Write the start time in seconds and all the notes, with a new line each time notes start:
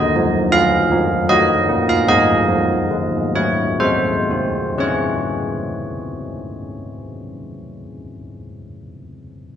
Already playing: F#4 D#5
0.16 F3
0.52 F#3 F5
0.92 F3
1.29 F#3 F#4 D#5
1.69 A#3
1.89 F5
2.08 G#3 F#4 D#5
2.48 F3
2.91 D#3
3.35 F#3 C#5
3.80 G#3 F#4 C5
4.31 C4
4.78 C#4 G#4 C#5